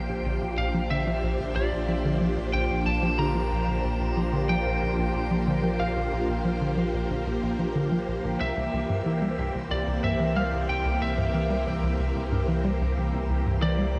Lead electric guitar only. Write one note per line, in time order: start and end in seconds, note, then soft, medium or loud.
0.00 0.62 G5 medium
0.58 0.90 F5 loud
0.90 1.55 E5 loud
1.56 2.57 D5 medium
2.53 2.86 G5 loud
2.86 3.20 A5 loud
3.19 4.45 A#5 loud
4.49 5.79 G5 loud
5.80 7.06 F5 medium
8.41 9.71 E5 medium
9.71 10.03 D5 medium
10.04 10.37 E5 medium
10.36 10.69 F5 loud
10.69 11.03 G5 loud
11.02 11.63 E5 loud
13.62 13.99 D5 loud